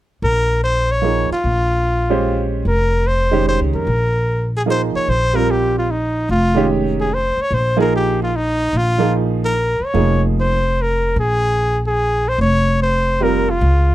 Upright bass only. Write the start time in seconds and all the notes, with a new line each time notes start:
0.22 A#1
1.30 muted upright bass stroke
1.44 A#1
2.65 F1
3.60 C#2
3.73 F2
3.87 A#1
4.95 muted upright bass stroke
5.08 A#1
6.29 F1
7.37 muted upright bass stroke
7.51 A#1
8.73 A#1
9.80 muted upright bass stroke
9.94 F1
11.16 A#1
12.38 F1
13.61 C#2